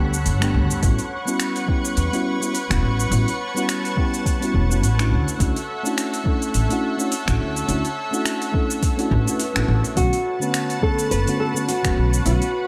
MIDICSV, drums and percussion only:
0, 0, Header, 1, 2, 480
1, 0, Start_track
1, 0, Tempo, 571429
1, 697, Time_signature, 4, 2, 24, 8
1, 10646, End_track
2, 0, Start_track
2, 0, Title_t, "Drums"
2, 114, Note_on_c, 9, 82, 61
2, 198, Note_off_c, 9, 82, 0
2, 216, Note_on_c, 9, 46, 57
2, 219, Note_on_c, 9, 82, 51
2, 300, Note_off_c, 9, 46, 0
2, 303, Note_off_c, 9, 82, 0
2, 352, Note_on_c, 9, 26, 69
2, 352, Note_on_c, 9, 46, 40
2, 355, Note_on_c, 9, 82, 31
2, 436, Note_off_c, 9, 26, 0
2, 436, Note_off_c, 9, 46, 0
2, 439, Note_off_c, 9, 82, 0
2, 591, Note_on_c, 9, 46, 28
2, 594, Note_on_c, 9, 82, 66
2, 675, Note_off_c, 9, 46, 0
2, 678, Note_off_c, 9, 82, 0
2, 695, Note_on_c, 9, 36, 105
2, 695, Note_on_c, 9, 46, 54
2, 698, Note_on_c, 9, 82, 49
2, 779, Note_off_c, 9, 36, 0
2, 779, Note_off_c, 9, 46, 0
2, 782, Note_off_c, 9, 82, 0
2, 828, Note_on_c, 9, 46, 41
2, 831, Note_on_c, 9, 82, 31
2, 912, Note_off_c, 9, 46, 0
2, 915, Note_off_c, 9, 82, 0
2, 1072, Note_on_c, 9, 82, 65
2, 1156, Note_off_c, 9, 82, 0
2, 1173, Note_on_c, 9, 26, 69
2, 1173, Note_on_c, 9, 46, 64
2, 1176, Note_on_c, 9, 82, 52
2, 1257, Note_off_c, 9, 26, 0
2, 1257, Note_off_c, 9, 46, 0
2, 1260, Note_off_c, 9, 82, 0
2, 1308, Note_on_c, 9, 46, 43
2, 1311, Note_on_c, 9, 82, 33
2, 1392, Note_off_c, 9, 46, 0
2, 1395, Note_off_c, 9, 82, 0
2, 1415, Note_on_c, 9, 36, 101
2, 1499, Note_off_c, 9, 36, 0
2, 1551, Note_on_c, 9, 46, 26
2, 1554, Note_on_c, 9, 82, 63
2, 1635, Note_off_c, 9, 46, 0
2, 1638, Note_off_c, 9, 82, 0
2, 1654, Note_on_c, 9, 46, 60
2, 1657, Note_on_c, 9, 82, 51
2, 1738, Note_off_c, 9, 46, 0
2, 1741, Note_off_c, 9, 82, 0
2, 1792, Note_on_c, 9, 46, 40
2, 1795, Note_on_c, 9, 82, 33
2, 1876, Note_off_c, 9, 46, 0
2, 1879, Note_off_c, 9, 82, 0
2, 2036, Note_on_c, 9, 82, 56
2, 2120, Note_off_c, 9, 82, 0
2, 2139, Note_on_c, 9, 46, 60
2, 2142, Note_on_c, 9, 82, 50
2, 2223, Note_off_c, 9, 46, 0
2, 2226, Note_off_c, 9, 82, 0
2, 2272, Note_on_c, 9, 36, 96
2, 2275, Note_on_c, 9, 26, 68
2, 2275, Note_on_c, 9, 46, 42
2, 2278, Note_on_c, 9, 82, 32
2, 2356, Note_off_c, 9, 36, 0
2, 2359, Note_off_c, 9, 26, 0
2, 2359, Note_off_c, 9, 46, 0
2, 2362, Note_off_c, 9, 82, 0
2, 2516, Note_on_c, 9, 46, 27
2, 2519, Note_on_c, 9, 82, 62
2, 2600, Note_off_c, 9, 46, 0
2, 2603, Note_off_c, 9, 82, 0
2, 2618, Note_on_c, 9, 46, 62
2, 2621, Note_on_c, 9, 82, 51
2, 2702, Note_off_c, 9, 46, 0
2, 2705, Note_off_c, 9, 82, 0
2, 2755, Note_on_c, 9, 46, 41
2, 2758, Note_on_c, 9, 82, 30
2, 2839, Note_off_c, 9, 46, 0
2, 2842, Note_off_c, 9, 82, 0
2, 2998, Note_on_c, 9, 82, 64
2, 3082, Note_off_c, 9, 82, 0
2, 3098, Note_on_c, 9, 26, 68
2, 3098, Note_on_c, 9, 46, 65
2, 3101, Note_on_c, 9, 82, 52
2, 3182, Note_off_c, 9, 26, 0
2, 3182, Note_off_c, 9, 46, 0
2, 3185, Note_off_c, 9, 82, 0
2, 3235, Note_on_c, 9, 46, 41
2, 3238, Note_on_c, 9, 82, 33
2, 3319, Note_off_c, 9, 46, 0
2, 3322, Note_off_c, 9, 82, 0
2, 3336, Note_on_c, 9, 36, 97
2, 3420, Note_off_c, 9, 36, 0
2, 3475, Note_on_c, 9, 46, 27
2, 3478, Note_on_c, 9, 82, 59
2, 3559, Note_off_c, 9, 46, 0
2, 3562, Note_off_c, 9, 82, 0
2, 3577, Note_on_c, 9, 36, 94
2, 3581, Note_on_c, 9, 46, 59
2, 3584, Note_on_c, 9, 82, 49
2, 3661, Note_off_c, 9, 36, 0
2, 3665, Note_off_c, 9, 46, 0
2, 3668, Note_off_c, 9, 82, 0
2, 3716, Note_on_c, 9, 46, 40
2, 3719, Note_on_c, 9, 82, 32
2, 3800, Note_off_c, 9, 46, 0
2, 3803, Note_off_c, 9, 82, 0
2, 3816, Note_on_c, 9, 36, 53
2, 3900, Note_off_c, 9, 36, 0
2, 3959, Note_on_c, 9, 82, 60
2, 4043, Note_off_c, 9, 82, 0
2, 4061, Note_on_c, 9, 46, 60
2, 4064, Note_on_c, 9, 82, 50
2, 4145, Note_off_c, 9, 46, 0
2, 4148, Note_off_c, 9, 82, 0
2, 4194, Note_on_c, 9, 26, 67
2, 4194, Note_on_c, 9, 46, 42
2, 4197, Note_on_c, 9, 82, 30
2, 4278, Note_off_c, 9, 26, 0
2, 4278, Note_off_c, 9, 46, 0
2, 4281, Note_off_c, 9, 82, 0
2, 4435, Note_on_c, 9, 46, 28
2, 4438, Note_on_c, 9, 82, 58
2, 4519, Note_off_c, 9, 46, 0
2, 4522, Note_off_c, 9, 82, 0
2, 4537, Note_on_c, 9, 36, 105
2, 4538, Note_on_c, 9, 46, 64
2, 4541, Note_on_c, 9, 82, 49
2, 4621, Note_off_c, 9, 36, 0
2, 4622, Note_off_c, 9, 46, 0
2, 4625, Note_off_c, 9, 82, 0
2, 4674, Note_on_c, 9, 46, 42
2, 4677, Note_on_c, 9, 82, 29
2, 4758, Note_off_c, 9, 46, 0
2, 4761, Note_off_c, 9, 82, 0
2, 4919, Note_on_c, 9, 82, 63
2, 5003, Note_off_c, 9, 82, 0
2, 5021, Note_on_c, 9, 26, 69
2, 5021, Note_on_c, 9, 46, 65
2, 5024, Note_on_c, 9, 82, 52
2, 5105, Note_off_c, 9, 26, 0
2, 5105, Note_off_c, 9, 46, 0
2, 5108, Note_off_c, 9, 82, 0
2, 5154, Note_on_c, 9, 46, 46
2, 5157, Note_on_c, 9, 82, 33
2, 5238, Note_off_c, 9, 46, 0
2, 5241, Note_off_c, 9, 82, 0
2, 5257, Note_on_c, 9, 36, 96
2, 5341, Note_off_c, 9, 36, 0
2, 5393, Note_on_c, 9, 46, 29
2, 5396, Note_on_c, 9, 82, 55
2, 5477, Note_off_c, 9, 46, 0
2, 5480, Note_off_c, 9, 82, 0
2, 5496, Note_on_c, 9, 46, 64
2, 5499, Note_on_c, 9, 82, 50
2, 5580, Note_off_c, 9, 46, 0
2, 5583, Note_off_c, 9, 82, 0
2, 5632, Note_on_c, 9, 46, 46
2, 5635, Note_on_c, 9, 82, 31
2, 5716, Note_off_c, 9, 46, 0
2, 5719, Note_off_c, 9, 82, 0
2, 5876, Note_on_c, 9, 82, 54
2, 5960, Note_off_c, 9, 82, 0
2, 5979, Note_on_c, 9, 46, 66
2, 5982, Note_on_c, 9, 82, 49
2, 6063, Note_off_c, 9, 46, 0
2, 6066, Note_off_c, 9, 82, 0
2, 6111, Note_on_c, 9, 36, 92
2, 6113, Note_on_c, 9, 26, 67
2, 6113, Note_on_c, 9, 46, 43
2, 6116, Note_on_c, 9, 82, 31
2, 6195, Note_off_c, 9, 36, 0
2, 6197, Note_off_c, 9, 26, 0
2, 6197, Note_off_c, 9, 46, 0
2, 6200, Note_off_c, 9, 82, 0
2, 6354, Note_on_c, 9, 46, 28
2, 6357, Note_on_c, 9, 82, 54
2, 6438, Note_off_c, 9, 46, 0
2, 6441, Note_off_c, 9, 82, 0
2, 6456, Note_on_c, 9, 46, 62
2, 6459, Note_on_c, 9, 82, 48
2, 6540, Note_off_c, 9, 46, 0
2, 6543, Note_off_c, 9, 82, 0
2, 6592, Note_on_c, 9, 46, 41
2, 6595, Note_on_c, 9, 82, 30
2, 6676, Note_off_c, 9, 46, 0
2, 6679, Note_off_c, 9, 82, 0
2, 6835, Note_on_c, 9, 82, 62
2, 6919, Note_off_c, 9, 82, 0
2, 6934, Note_on_c, 9, 26, 76
2, 6934, Note_on_c, 9, 46, 64
2, 6937, Note_on_c, 9, 82, 51
2, 7018, Note_off_c, 9, 26, 0
2, 7018, Note_off_c, 9, 46, 0
2, 7021, Note_off_c, 9, 82, 0
2, 7070, Note_on_c, 9, 46, 46
2, 7073, Note_on_c, 9, 82, 30
2, 7154, Note_off_c, 9, 46, 0
2, 7157, Note_off_c, 9, 82, 0
2, 7175, Note_on_c, 9, 36, 96
2, 7259, Note_off_c, 9, 36, 0
2, 7310, Note_on_c, 9, 46, 28
2, 7313, Note_on_c, 9, 82, 60
2, 7394, Note_off_c, 9, 46, 0
2, 7397, Note_off_c, 9, 82, 0
2, 7414, Note_on_c, 9, 36, 100
2, 7414, Note_on_c, 9, 46, 65
2, 7417, Note_on_c, 9, 82, 49
2, 7498, Note_off_c, 9, 36, 0
2, 7498, Note_off_c, 9, 46, 0
2, 7501, Note_off_c, 9, 82, 0
2, 7550, Note_on_c, 9, 46, 45
2, 7553, Note_on_c, 9, 82, 30
2, 7634, Note_off_c, 9, 46, 0
2, 7637, Note_off_c, 9, 82, 0
2, 7654, Note_on_c, 9, 36, 54
2, 7738, Note_off_c, 9, 36, 0
2, 7791, Note_on_c, 9, 46, 31
2, 7794, Note_on_c, 9, 82, 58
2, 7875, Note_off_c, 9, 46, 0
2, 7878, Note_off_c, 9, 82, 0
2, 7892, Note_on_c, 9, 46, 64
2, 7895, Note_on_c, 9, 82, 50
2, 7976, Note_off_c, 9, 46, 0
2, 7979, Note_off_c, 9, 82, 0
2, 8029, Note_on_c, 9, 26, 78
2, 8029, Note_on_c, 9, 46, 44
2, 8032, Note_on_c, 9, 82, 30
2, 8113, Note_off_c, 9, 26, 0
2, 8113, Note_off_c, 9, 46, 0
2, 8116, Note_off_c, 9, 82, 0
2, 8269, Note_on_c, 9, 46, 31
2, 8272, Note_on_c, 9, 82, 55
2, 8353, Note_off_c, 9, 46, 0
2, 8356, Note_off_c, 9, 82, 0
2, 8373, Note_on_c, 9, 46, 65
2, 8374, Note_on_c, 9, 36, 100
2, 8376, Note_on_c, 9, 82, 51
2, 8457, Note_off_c, 9, 46, 0
2, 8458, Note_off_c, 9, 36, 0
2, 8460, Note_off_c, 9, 82, 0
2, 8509, Note_on_c, 9, 46, 45
2, 8512, Note_on_c, 9, 82, 33
2, 8593, Note_off_c, 9, 46, 0
2, 8596, Note_off_c, 9, 82, 0
2, 8752, Note_on_c, 9, 82, 64
2, 8836, Note_off_c, 9, 82, 0
2, 8853, Note_on_c, 9, 26, 76
2, 8853, Note_on_c, 9, 46, 66
2, 8856, Note_on_c, 9, 82, 53
2, 8937, Note_off_c, 9, 26, 0
2, 8937, Note_off_c, 9, 46, 0
2, 8940, Note_off_c, 9, 82, 0
2, 8987, Note_on_c, 9, 46, 46
2, 8990, Note_on_c, 9, 82, 35
2, 9071, Note_off_c, 9, 46, 0
2, 9074, Note_off_c, 9, 82, 0
2, 9094, Note_on_c, 9, 36, 100
2, 9178, Note_off_c, 9, 36, 0
2, 9228, Note_on_c, 9, 46, 29
2, 9231, Note_on_c, 9, 82, 61
2, 9312, Note_off_c, 9, 46, 0
2, 9315, Note_off_c, 9, 82, 0
2, 9335, Note_on_c, 9, 46, 60
2, 9338, Note_on_c, 9, 82, 52
2, 9419, Note_off_c, 9, 46, 0
2, 9422, Note_off_c, 9, 82, 0
2, 9471, Note_on_c, 9, 46, 46
2, 9474, Note_on_c, 9, 82, 33
2, 9555, Note_off_c, 9, 46, 0
2, 9558, Note_off_c, 9, 82, 0
2, 9714, Note_on_c, 9, 82, 64
2, 9798, Note_off_c, 9, 82, 0
2, 9816, Note_on_c, 9, 46, 66
2, 9819, Note_on_c, 9, 82, 53
2, 9900, Note_off_c, 9, 46, 0
2, 9903, Note_off_c, 9, 82, 0
2, 9950, Note_on_c, 9, 26, 76
2, 9950, Note_on_c, 9, 36, 97
2, 9950, Note_on_c, 9, 46, 44
2, 9953, Note_on_c, 9, 82, 32
2, 10034, Note_off_c, 9, 26, 0
2, 10034, Note_off_c, 9, 36, 0
2, 10034, Note_off_c, 9, 46, 0
2, 10037, Note_off_c, 9, 82, 0
2, 10191, Note_on_c, 9, 46, 31
2, 10194, Note_on_c, 9, 82, 62
2, 10275, Note_off_c, 9, 46, 0
2, 10278, Note_off_c, 9, 82, 0
2, 10296, Note_on_c, 9, 46, 63
2, 10299, Note_on_c, 9, 82, 53
2, 10380, Note_off_c, 9, 46, 0
2, 10383, Note_off_c, 9, 82, 0
2, 10430, Note_on_c, 9, 46, 43
2, 10433, Note_on_c, 9, 82, 31
2, 10514, Note_off_c, 9, 46, 0
2, 10517, Note_off_c, 9, 82, 0
2, 10646, End_track
0, 0, End_of_file